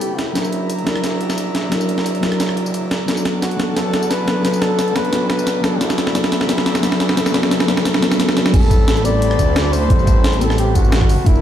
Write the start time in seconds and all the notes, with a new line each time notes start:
Already playing: G3 C4 E4 A4 G5 B5
0.01 F#1 G4, closed hi-hat, tambourine
0.18 E4 D5 E5 A#5, snare, closed hi-hat, tambourine
0.33 F#1 F#3 D4 E4, snare, closed hi-hat, tambourine
0.38 A#4
0.44 tambourine
0.53 closed hi-hat, tambourine
0.70 closed hi-hat, tambourine
0.78 closed hi-hat
0.84 F#1 F#3 D4 E4, snare, closed hi-hat, tambourine
0.89 A#4
0.96 cross-stick
1.04 snare, closed hi-hat, tambourine
1.21 A#1, closed hi-hat
1.30 cross-stick, snare, tambourine
1.38 closed hi-hat, tambourine
1.55 snare, closed hi-hat
1.69 F#1 F#3 D4 E4, snare, closed hi-hat, tambourine
1.74 A#4
1.81 tambourine
1.89 closed hi-hat, tambourine
1.98 cross-stick, snare
2.06 closed hi-hat, tambourine
2.15 closed hi-hat
2.21 F#1 F#3 D4 E4, snare, closed hi-hat, tambourine
2.25 A#4
2.32 cross-stick, closed hi-hat
2.40 snare, closed hi-hat, tambourine
2.49 cross-stick
2.57 E1, closed hi-hat
2.66 F#1, tambourine
2.74 closed hi-hat, tambourine
2.91 F#1, snare, closed hi-hat, tambourine
3.06 B1 F#3 B3 D4 F#5 A5, snare, closed hi-hat, tambourine
3.10 A4
3.17 tambourine
3.25 snare, closed hi-hat, tambourine
3.42 F#4, snare, closed hi-hat, tambourine
3.51 closed hi-hat
3.57 B1 F#3 B3 D4, snare, closed hi-hat, tambourine
3.61 A4
3.74 F#3 B3 D4 A4, snare, closed hi-hat, tambourine
3.78 A4
3.93 E2, snare, closed hi-hat
4.02 tambourine
4.10 B4, snare, closed hi-hat, tambourine
4.25 F#3 B3 D4, snare, closed hi-hat
4.30 A4
4.42 B1 F#3 B3 D4 B4, snare, closed hi-hat, tambourine
4.47 A4
4.54 tambourine
4.62 A4, snare, closed hi-hat, tambourine
4.79 snare, closed hi-hat, tambourine
4.88 closed hi-hat
4.93 B1 F#3 B3 D4 B4, snare, closed hi-hat, tambourine
4.98 A4
5.05 closed hi-hat
5.11 B1 F#3 B3 D4, snare, closed hi-hat, tambourine
5.15 A4
5.30 B4, snare, closed hi-hat
5.39 tambourine
5.47 B1, snare, closed hi-hat, tambourine
5.61 F#3 B3 D4 A4, snare, closed hi-hat, tambourine
5.66 A4
5.79 C2 F#3 B3 D4 E4 E5 B5, snare, closed hi-hat, tambourine
5.83 A4
5.90 snare, tambourine
5.98 snare, closed hi-hat, tambourine
6.07 snare
6.13 F#3 B3 D4, snare, closed hi-hat, tambourine
6.17 A4
6.24 snare, closed hi-hat
6.32 C2, snare, closed hi-hat, tambourine
6.41 snare
6.47 F#3 B3 D4, snare, closed hi-hat, tambourine
6.51 A4
6.58 snare
6.66 E2, snare, closed hi-hat
6.75 snare, tambourine
6.81 F#3 B3 D4, snare, closed hi-hat, tambourine
6.85 A4
6.92 snare
7.00 snare, closed hi-hat
7.09 snare
7.15 C2 F#3 B3 D4, snare, closed hi-hat, tambourine
7.19 A4
7.26 snare, tambourine
7.32 F#3 B3 D4, snare, closed hi-hat, tambourine
7.36 A4
7.43 snare
7.49 F#3 B3 D4, snare, closed hi-hat, tambourine
7.53 A4
7.60 snare, closed hi-hat
7.66 C2 F#3 B3 D4, snare, closed hi-hat, tambourine
7.70 A4
7.77 snare, closed hi-hat
7.83 F#3 B3 D4, snare, closed hi-hat, tambourine
7.87 A4
7.94 snare
8.00 F#3 B3 D4, snare, closed hi-hat
8.05 A4
8.11 snare, closed hi-hat, tambourine
8.18 F#3 B3 D4, snare, closed hi-hat, tambourine
8.22 A4
8.29 snare
8.35 G1 F#3 B3 D4, snare, closed hi-hat, tambourine
8.39 A4
8.46 snare, tambourine
8.51 A1 G3 C4 A4 C5 A5 B5, kick, closed hi-hat, crash
8.63 tambourine
8.71 kick, closed hi-hat, tambourine
8.88 snare, closed hi-hat
8.97 closed hi-hat
9.03 A1 G3 C4 E4 D5, closed hi-hat, tambourine
9.07 A4
9.22 closed hi-hat
9.31 cross-stick
9.39 D2, kick, closed hi-hat, tambourine
9.56 snare, closed hi-hat
9.73 C5, open hi-hat, tambourine
9.88 A1 G3 C4 E4, kick, closed hi-hat
9.92 A4
9.99 tambourine
10.07 kick, closed hi-hat, tambourine
10.24 snare, closed hi-hat
10.33 closed hi-hat
10.39 A1 G3 C4 E4 A4, closed hi-hat, tambourine
10.43 A4
10.50 cross-stick, snare
10.58 G4, closed hi-hat
10.75 G1 F#4, kick, closed hi-hat, tambourine
10.84 A1, tambourine
10.92 snare, closed hi-hat
11.01 kick, cross-stick
11.09 F#1 D5 E5 A5, open hi-hat, tambourine
11.24 F#1 F#3 D4 E4, kick, closed hi-hat
11.29 A#4
11.35 tambourine